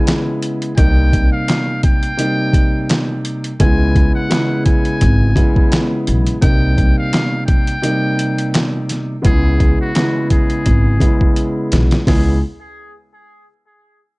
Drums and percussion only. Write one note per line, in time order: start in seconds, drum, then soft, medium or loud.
0.07 snare loud
0.07 clap medium
0.07 closed hi-hat medium
0.43 closed hi-hat medium
0.62 closed hi-hat medium
0.78 kick loud
0.78 closed hi-hat medium
1.13 kick medium
1.13 closed hi-hat medium
1.48 snare loud
1.48 clap loud
1.48 closed hi-hat loud
1.83 kick medium
1.83 closed hi-hat medium
2.03 closed hi-hat medium
2.19 closed hi-hat loud
2.53 kick medium
2.53 closed hi-hat medium
2.89 snare loud
2.89 clap medium
2.89 closed hi-hat medium
3.25 closed hi-hat medium
3.44 closed hi-hat medium
3.60 kick loud
3.60 closed hi-hat loud
3.96 kick medium
3.96 closed hi-hat medium
4.31 snare loud
4.31 clap loud
4.31 closed hi-hat loud
4.66 kick medium
4.66 closed hi-hat medium
4.85 closed hi-hat medium
5.01 kick loud
5.01 closed hi-hat loud
5.36 kick loud
5.36 closed hi-hat medium
5.56 kick loud
5.72 snare loud
5.72 clap medium
5.72 closed hi-hat medium
6.07 closed hi-hat medium
6.27 closed hi-hat medium
6.42 kick loud
6.42 closed hi-hat loud
6.78 kick medium
6.78 closed hi-hat medium
7.13 snare loud
7.13 clap loud
7.13 closed hi-hat loud
7.48 kick medium
7.48 closed hi-hat medium
7.67 closed hi-hat medium
7.83 closed hi-hat loud
8.19 closed hi-hat medium
8.38 closed hi-hat medium
8.54 snare loud
8.54 clap medium
8.54 closed hi-hat medium
8.89 snare soft
8.89 closed hi-hat medium
9.25 kick loud
9.25 closed hi-hat medium
9.60 kick medium
9.60 closed hi-hat medium
9.95 snare loud
9.95 clap loud
9.95 closed hi-hat medium
10.30 kick medium
10.30 closed hi-hat medium
10.50 closed hi-hat medium
10.66 kick loud
10.66 closed hi-hat loud
11.01 kick loud
11.01 closed hi-hat medium
11.21 kick medium
11.36 closed hi-hat medium
11.72 snare loud
11.72 closed hi-hat medium
11.91 snare medium
11.91 closed hi-hat medium
12.07 kick loud
12.07 snare loud
12.07 open hi-hat medium